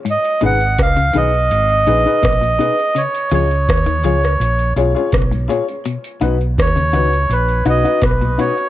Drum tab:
HH |xxxxxxxxxxxxxxxx|xxxxxxxxxxxxxxxx|xxxxxxxxxxxxxxxx|
SD |----r-------r---|----r--r----r---|----r-------r---|
BD |----o-------o---|----o-------o---|----o-------o---|